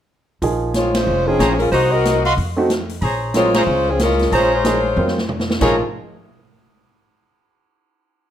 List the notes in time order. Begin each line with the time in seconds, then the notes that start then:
0.42 A#1 F3 A#3 D#4 G#4, kick, open hi-hat
0.74 G#3 C4 F4 C#5, snare, closed hi-hat
0.94 G#3 C#4 F4 C5, snare, ride
1.07 F1
1.27 F3 A#3 C4 C#4 D#4 G#4 A#4
1.39 A#1 G#4 C5 C#5 A#5, snare, closed hi-hat
1.56 G#3 C#4 F4 G#4 A#4, open hi-hat
1.71 C2 A#3 D#4 F#4 C5 D#5 A#5, kick, open hi-hat
1.92 C4 F#4 A#4 D#5
2.05 snare, closed hi-hat
2.24 F#4 D#5 F5 C6, open hi-hat
2.37 F2, kick, open hi-hat
2.56 A3 C4 D#4 F#4
2.70 snare, closed hi-hat
2.89 open hi-hat
3.02 A#1 G#4 C5 C#5 A#5, kick, open hi-hat
3.34 F#3 G#3 C4 F4 A#4 C#5, snare, closed hi-hat
3.54 G#3 C#4 F4 G#4 C5 C#5 A#5, snare, ride
3.67 C#2
3.90 F3 C4 C#4 G#4
3.99 G#3 C#4 F4 A#4, snare, closed hi-hat
4.10 snare
4.19 snare, open hi-hat
4.31 A#1 G#3 F4 G#4 C5 C#5 A#5, kick, open hi-hat
4.36 C#4
4.54 G#3 F4 C5 C#5
4.64 F3 A#3 D#4 G#4, snare, closed hi-hat
4.96 F2 F#3 C4 F4 A#4
5.08 snare
5.18 snare
5.29 mid tom
5.40 snare
5.50 snare
5.61 A#1 F3 G#3 A#3 C#4 D#4 F4 G#4 A#4 C5 C#5 A#5, kick, snare, crash